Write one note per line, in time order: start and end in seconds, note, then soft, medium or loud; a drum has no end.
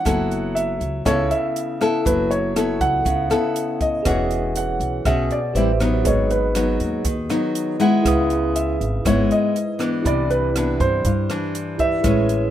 0.00 0.58 F#5 loud
0.05 0.77 F#1 medium
0.05 1.03 F#3 soft
0.05 0.73 B3 medium
0.05 0.73 E4 medium
0.05 0.73 A4 medium
0.05 kick medium
0.05 cross-stick medium
0.05 closed hi-hat soft
0.31 closed hi-hat soft
0.55 1.02 E5 medium
0.55 closed hi-hat soft
0.80 1.04 C#2 medium
0.80 closed hi-hat soft
1.05 1.29 C#2 loud
1.05 2.03 C#3 medium
1.05 1.76 B3 medium
1.05 1.77 E4 medium
1.05 1.77 A4 medium
1.05 1.32 C#5 loud
1.05 kick medium
1.05 cross-stick medium
1.05 closed hi-hat soft
1.31 2.08 E5 medium
1.31 closed hi-hat soft
1.56 closed hi-hat soft
1.81 2.52 B3 medium
1.81 2.52 E4 medium
1.81 2.52 A4 medium
1.81 cross-stick medium
1.81 closed hi-hat soft
2.05 2.77 F#1 medium
2.05 3.03 F#3 medium
2.05 2.32 B4 medium
2.05 kick medium
2.05 closed hi-hat soft
2.31 2.82 C#5 medium
2.31 closed hi-hat soft
2.56 3.27 B3 medium
2.56 3.27 E4 soft
2.56 3.27 A4 medium
2.56 cross-stick medium
2.56 closed hi-hat soft
2.81 3.04 C#2 medium
2.81 3.84 F#5 medium
2.81 kick medium
2.81 closed hi-hat soft
3.05 3.29 C#2 medium
3.05 4.03 C#3 medium
3.05 kick medium
3.05 closed hi-hat soft
3.30 4.01 B3 medium
3.30 4.01 E4 medium
3.30 4.02 A4 medium
3.30 cross-stick medium
3.30 closed hi-hat soft
3.56 closed hi-hat soft
3.81 4.52 D#5 medium
3.81 kick medium
3.81 closed hi-hat soft
4.03 4.77 E1 medium
4.03 5.03 E3 soft
4.03 5.01 C#4 medium
4.03 5.02 F#4 soft
4.03 5.51 G#4 soft
4.03 5.02 G#4 medium
4.03 5.52 B4 soft
4.03 kick medium
4.03 cross-stick medium
4.03 closed hi-hat soft
4.07 5.53 C#5 soft
4.07 5.54 F#5 medium
4.31 closed hi-hat soft
4.56 5.08 F#5 medium
4.56 closed hi-hat soft
4.80 5.03 B1 medium
4.80 closed hi-hat soft
5.05 5.29 B1 medium
5.05 5.53 B2 medium
5.05 5.39 C#4 medium
5.05 5.39 F#4 medium
5.05 5.40 G#4 medium
5.05 5.29 E5 medium
5.05 kick medium
5.05 cross-stick medium
5.05 closed hi-hat soft
5.31 6.08 D5 medium
5.31 closed hi-hat soft
5.54 6.02 A1 loud
5.54 5.70 G3 soft
5.54 5.70 C4 soft
5.54 5.71 E4 medium
5.54 6.04 G4 soft
5.54 6.05 B4 soft
5.54 6.05 C5 soft
5.54 6.06 E5 medium
5.54 closed hi-hat soft
5.80 6.51 F#3 medium
5.80 6.51 B3 medium
5.80 6.51 D#4 medium
5.80 cross-stick medium
5.80 closed hi-hat soft
6.03 6.76 G#1 medium
6.03 7.03 G#2 medium
6.03 8.00 F#4 soft
6.03 8.00 G#4 soft
6.03 8.01 B4 soft
6.03 kick medium
6.03 closed hi-hat soft
6.07 6.32 C#5 medium
6.07 8.02 D#5 soft
6.30 6.77 B4 medium
6.30 closed hi-hat soft
6.55 7.05 F#3 medium
6.55 7.05 B3 medium
6.55 7.05 D#4 medium
6.55 cross-stick medium
6.55 closed hi-hat soft
6.80 7.03 D#2 medium
6.80 closed hi-hat soft
7.05 7.28 D#2 medium
7.05 8.02 D#3 medium
7.05 kick medium
7.05 closed hi-hat soft
7.29 7.76 F#3 medium
7.29 7.76 B3 medium
7.29 7.76 D#4 medium
7.29 cross-stick medium
7.29 closed hi-hat soft
7.55 closed hi-hat soft
7.80 8.76 G#3 medium
7.80 8.76 B3 medium
7.80 8.76 E4 medium
7.80 8.58 F#5 medium
7.80 closed hi-hat soft
8.02 8.76 C#2 medium
8.02 9.02 C#3 medium
8.02 9.99 E4 soft
8.02 10.00 G#4 soft
8.02 10.01 B4 soft
8.02 kick medium
8.02 cross-stick medium
8.02 closed hi-hat soft
8.08 10.02 D#6 medium
8.30 closed hi-hat soft
8.56 9.07 E5 medium
8.56 closed hi-hat soft
8.81 9.03 G#1 medium
8.81 closed hi-hat soft
9.05 9.28 G#1 medium
9.05 10.02 G#2 medium
9.05 9.55 G#3 medium
9.05 9.55 B3 medium
9.05 9.55 E4 medium
9.05 9.31 C#5 medium
9.05 kick medium
9.05 cross-stick soft
9.05 closed hi-hat soft
9.31 10.02 D#5 medium
9.31 closed hi-hat soft
9.56 closed hi-hat soft
9.79 10.50 E3 medium
9.79 10.50 B3 medium
9.79 10.51 D4 medium
9.79 cross-stick medium
9.79 closed hi-hat soft
10.02 10.76 C2 medium
10.02 11.02 C3 soft
10.02 11.74 E4 soft
10.02 11.75 G4 soft
10.02 11.76 B5 soft
10.02 kick medium
10.02 closed hi-hat soft
10.07 10.31 D5 medium
10.07 11.77 D5 medium
10.30 10.81 B4 medium
10.30 closed hi-hat soft
10.56 11.05 E3 soft
10.56 11.05 B3 soft
10.56 11.05 D4 medium
10.56 cross-stick medium
10.56 closed hi-hat soft
10.80 11.03 G2 medium
10.80 11.83 C5 medium
10.80 kick medium
10.80 closed hi-hat soft
11.05 11.28 G2 medium
11.05 12.02 G2 medium
11.05 kick medium
11.05 closed hi-hat soft
11.30 12.00 E3 medium
11.30 12.01 D4 medium
11.30 cross-stick medium
11.30 closed hi-hat soft
11.55 closed hi-hat soft
11.78 11.99 E4 soft
11.78 12.04 G4 soft
11.78 12.04 B4 soft
11.78 12.05 D5 soft
11.78 12.50 E5 loud
11.78 kick soft
11.78 closed hi-hat soft
12.01 12.50 A1 medium
12.01 12.50 A2 soft
12.01 12.50 G#3 soft
12.01 12.50 C#4 medium
12.01 12.50 E4 soft
12.01 12.50 G#4 soft
12.01 kick medium
12.01 cross-stick medium
12.01 closed hi-hat soft
12.05 12.50 B4 soft
12.05 12.50 C#5 medium
12.29 closed hi-hat soft